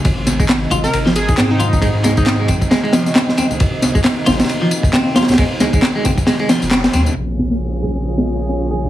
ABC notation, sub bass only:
X:1
M:4/4
L:1/16
Q:"Swing 16ths" 1/4=135
K:Abmix
V:1 name="Sub bass" clef=bass
A,,,4- A,,, z A,,, z A,,,3 A,, A,,4- | A,,6 A,,, z8 z | z6 A,,, z8 z | z6 A,,, z4 F,,,2 z E,, z |
B,,,16 |]